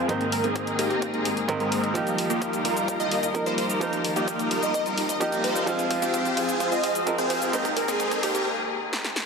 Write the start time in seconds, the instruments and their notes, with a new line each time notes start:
Already playing: grand piano F3 G#3 C4 F4 A#4, string section C4
0.08 grand piano G#2 D#3 A#3 C4 C5, string section G#2 D#3 A#3 G#4, supersaw synth G#3 A#3 C4 D#4 A#4, kick, closed hi-hat
0.21 closed hi-hat
0.32 digital synth lead A#4, open hi-hat
0.44 supersaw synth G#3 A#3 C4 D#4 G#4, closed hi-hat
0.56 kick, closed hi-hat
0.67 closed hi-hat
0.79 supersaw synth G#3 A#3 C4 D#4 A#4, digital synth lead G4, open hi-hat
0.90 digital synth lead G4, closed hi-hat
1.02 kick, closed hi-hat
1.14 supersaw synth G#3 A#3 C4 D#4 A#4, closed hi-hat
1.25 open hi-hat
1.37 closed hi-hat
1.48 grand piano G#2 D#3 A#3 C4 A#4, kick, closed hi-hat
1.60 supersaw synth G#3 A#3 C4 D#4 A#4, closed hi-hat
1.72 open hi-hat
1.84 closed hi-hat
1.94 string section D#2 G3 F4 A#4, grand piano F3 A#3 D#4 G4, supersaw synth G3 A#3 D#4 F4 A#4, kick, closed hi-hat, riser, cabasa
2.07 closed hi-hat, cabasa
2.18 open hi-hat
2.30 supersaw synth G3 A#3 D#4 F4 G4, closed hi-hat, cabasa
2.42 kick, closed hi-hat, cabasa
2.53 closed hi-hat, cabasa
2.65 supersaw synth G3 A#3 D#4 F4 A#4, open hi-hat
2.77 closed hi-hat, cabasa
2.88 kick, closed hi-hat, cabasa
3.00 supersaw synth G3 A#3 D#4 F4 A#4, digital synth lead D#5, closed hi-hat, cabasa
3.11 open hi-hat
3.23 closed hi-hat, cabasa
3.34 grand piano F3 A#3 D#4 A#4, kick, closed hi-hat, cabasa
3.46 supersaw synth G3 A#3 D#4 F4 A#4, digital synth lead C5, closed hi-hat, cabasa
3.58 digital synth lead C5, open hi-hat
3.70 closed hi-hat, cabasa
3.80 grand piano F3 A#3 D#4 C5, supersaw synth G3 A#3 D#4 F4 A#4, string section D#4, kick, closed hi-hat, cabasa
3.93 closed hi-hat, cabasa
4.04 open hi-hat
4.16 supersaw synth G3 A#3 D#4 F4 G4, closed hi-hat, cabasa
4.28 kick, closed hi-hat, cabasa
4.39 closed hi-hat, cabasa
4.51 supersaw synth G3 A#3 D#4 F4 A#4, open hi-hat
4.63 digital synth lead D#5, closed hi-hat, cabasa
4.74 digital synth lead D#5, kick, closed hi-hat, cabasa
4.86 supersaw synth G3 A#3 D#4 F4 A#4, closed hi-hat, cabasa
4.98 open hi-hat
5.09 digital synth lead D#5, closed hi-hat, cabasa
5.20 grand piano F3 A#3 D#4 G4, digital synth lead D#5, kick, closed hi-hat, cabasa
5.32 supersaw synth G3 A#3 D#4 F4 A#4, closed hi-hat, cabasa
5.44 digital synth lead C5, open hi-hat
5.56 closed hi-hat, cabasa
5.66 string section F2 F3 G#3 C4 C5, grand piano F3 G#3 C4 F4, supersaw synth C4 G#4, kick, closed hi-hat, cabasa
5.79 closed hi-hat, cabasa
5.91 kick, open hi-hat
6.02 supersaw synth C4 F4 G4, closed hi-hat, cabasa
6.14 kick, closed hi-hat, cabasa
6.25 closed hi-hat, cabasa
6.37 supersaw synth C4 F4 G#4, kick, open hi-hat
6.49 closed hi-hat, cabasa
6.60 kick, closed hi-hat, cabasa
6.72 supersaw synth C4 F4 G#4, digital synth lead D#5, closed hi-hat, cabasa
6.84 kick, open hi-hat
6.95 closed hi-hat, cabasa
7.06 grand piano F3 G#3 C4 A#4, kick, closed hi-hat, cabasa
7.18 supersaw synth C4 F4 G#4, digital synth lead C5, closed hi-hat, cabasa
7.30 digital synth lead C5, kick, open hi-hat
7.42 closed hi-hat, cabasa
7.52 grand piano G#2 D#3 A#3 C4 C5, string section G#2 D#3 A#3 G#4, supersaw synth G#3 A#3 C4 D#4 A#4, kick, closed hi-hat, cabasa
7.65 kick, closed hi-hat, cabasa
7.77 digital synth lead A#4, kick, open hi-hat
7.88 supersaw synth G#3 A#3 C4 D#4 G#4, kick, open hi-hat, cabasa
8.00 kick, closed hi-hat, cabasa
8.11 kick, closed hi-hat, cabasa
8.23 supersaw synth G#3 A#3 C4 D#4 A#4, digital synth lead G4, kick, open hi-hat
8.35 digital synth lead G4, kick, closed hi-hat, cabasa
8.93 snare
9.04 snare
9.16 snare